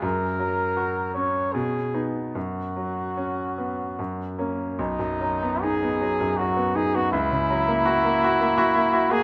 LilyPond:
<<
  \new Staff \with { instrumentName = "Trumpet" } { \time 3/4 \key b \major \tempo 4 = 79 ais'4. cis''8 gis'8. r16 | fis'2~ fis'8 r8 | dis'4 gis'4 fis'8 gis'16 fis'16 | e'2~ e'8. gis'16 | }
  \new Staff \with { instrumentName = "Grand piano" } { \time 3/4 \key b \major fis,8 fis8 fis'8 cis'8 b,8 <b dis'>8 | fis,8 fis8 cis'8 b8 fis,8 <ais cis'>8 | b,,16 fis,16 fis16 b16 dis'16 b16 fis16 fis,16 fis16 b16 dis'16 b16 | cis,16 cis16 fis16 ais16 fis'16 ais16 fis'16 ais16 fis'16 ais16 fis'16 ais16 | }
>>